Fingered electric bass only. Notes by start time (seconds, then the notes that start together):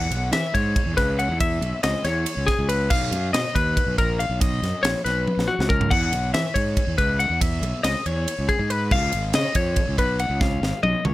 0.11 B1
0.32 E3
0.55 G#2
0.86 E2
0.97 C#2
1.29 E2
1.62 B1
1.84 C#2
2.04 E2
2.37 C#2
2.59 C#2
2.90 B1
3.11 F#2
3.33 B2
3.56 D#2
3.87 B1
3.98 A#1
4.30 B1
4.62 F#2
4.84 A#1
5.05 B1
5.37 A#1
5.59 C#2
5.91 E2
6.12 B1
6.34 E3
6.56 G#2
6.87 E2
6.98 C#2
7.30 E2
7.62 B1
7.84 C#2
8.06 E2
8.39 C#2
8.59 G#2
8.91 C#2
9.13 G#1
9.34 C#3
9.55 F2
9.88 C#2
9.98 B1
10.30 C#2
10.62 G#1
10.83 B1
11.05 C#2